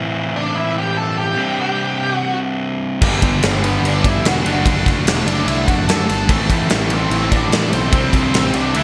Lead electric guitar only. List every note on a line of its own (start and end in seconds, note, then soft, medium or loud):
0.36 0.57 D4 medium
0.55 0.75 E4 medium
0.78 0.96 G4 loud
0.97 1.16 A4 loud
1.17 1.60 G4 loud
1.61 2.13 G4 medium
2.13 2.37 F#4 medium
3.64 3.82 B3 medium
3.88 4.07 D4 loud
4.08 4.25 E4 loud
4.28 4.64 F#4 loud
5.26 5.46 D4 medium
5.46 5.65 E4 medium
5.65 5.85 F#4 medium
5.88 6.26 A4 loud
6.90 7.28 C4 medium
7.31 7.71 D4 loud
7.71 8.13 C4 medium
8.14 8.55 C4 medium
8.55 8.74 D4 loud
8.75 8.83 E4 loud